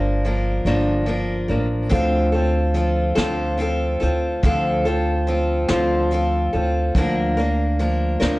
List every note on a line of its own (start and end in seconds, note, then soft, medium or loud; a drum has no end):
0.00 0.62 G1 medium
0.00 0.23 F3 soft
0.00 0.24 A#3 medium
0.00 0.24 D4 medium
0.00 0.24 A#4 soft
0.25 0.66 F3 medium
0.25 0.66 A#3 medium
0.25 0.65 D4 medium
0.25 0.64 A#4 medium
0.65 1.45 G1 medium
0.65 1.09 G2 medium
0.65 1.09 D3 medium
0.65 1.05 F3 medium
0.65 1.06 A#3 medium
0.65 1.07 D4 medium
0.65 1.08 A#4 medium
1.06 1.49 F3 medium
1.06 1.50 A#3 medium
1.06 1.48 D4 medium
1.06 1.47 A#4 medium
1.48 1.89 A1 medium
1.48 1.89 F3 soft
1.48 1.90 A#3 soft
1.48 1.91 D4 soft
1.48 1.91 A#4 soft
1.89 3.14 D2 medium
1.89 2.33 D3 medium
1.89 2.33 F3 medium
1.89 2.33 C4 medium
1.89 2.33 F4 medium
1.89 2.31 A4 medium
1.89 kick medium
1.89 closed hi-hat medium
2.32 2.74 C4 soft
2.32 2.74 F4 soft
2.32 2.75 A4 medium
2.32 closed hi-hat soft
2.74 3.16 F3 medium
2.74 3.15 C4 medium
2.74 3.15 F4 medium
2.74 3.14 A4 medium
2.74 closed hi-hat soft
3.15 3.97 D2 medium
3.15 3.60 D3 medium
3.15 3.56 F3 medium
3.15 3.57 C4 medium
3.15 3.59 F4 medium
3.15 3.58 A4 medium
3.15 snare medium
3.15 closed hi-hat medium
3.58 4.00 F3 soft
3.58 4.01 C4 medium
3.58 4.00 F4 medium
3.58 3.99 A4 medium
3.58 closed hi-hat soft
4.00 4.42 D2 medium
4.00 4.43 C4 soft
4.00 4.43 F4 soft
4.00 4.43 A4 medium
4.00 closed hi-hat soft
4.43 5.65 D2 medium
4.43 4.85 D3 medium
4.43 4.86 F3 medium
4.43 4.86 C4 medium
4.43 4.85 F4 medium
4.43 4.84 A4 medium
4.43 kick medium
4.43 closed hi-hat medium
4.85 5.27 C4 soft
4.85 5.28 F4 medium
4.85 5.27 A4 medium
4.85 closed hi-hat soft
5.27 5.69 F3 soft
5.27 5.69 C4 medium
5.27 5.68 F4 medium
5.27 5.68 A4 medium
5.27 closed hi-hat soft
5.68 6.49 D2 medium
5.68 6.12 D3 medium
5.68 6.11 F3 medium
5.68 6.11 C4 medium
5.68 6.11 F4 medium
5.68 6.11 A4 medium
5.68 snare medium
5.68 closed hi-hat medium
6.10 6.53 F3 medium
6.10 6.54 C4 medium
6.10 6.53 F4 medium
6.10 6.52 A4 medium
6.10 closed hi-hat soft
6.53 6.94 D2 medium
6.53 6.96 C4 soft
6.53 6.96 F4 soft
6.53 6.95 A4 medium
6.53 closed hi-hat medium
6.95 8.17 D2 medium
6.95 7.38 D3 medium
6.95 7.38 F3 medium
6.95 7.38 A#3 medium
6.95 7.38 D4 medium
6.95 7.36 A#4 medium
6.95 kick medium
6.95 closed hi-hat medium
7.37 7.79 A#3 soft
7.37 7.79 D4 medium
7.37 7.79 A#4 medium
7.37 closed hi-hat soft
7.79 8.20 F3 medium
7.79 8.19 A#3 medium
7.79 8.19 D4 medium
7.79 8.19 A#4 medium
7.79 closed hi-hat soft
8.20 8.39 D2 medium
8.20 8.39 D3 medium
8.20 8.39 F3 medium
8.20 8.39 A#3 medium
8.20 8.39 D4 medium
8.20 8.39 A#4 medium
8.20 snare medium
8.20 closed hi-hat medium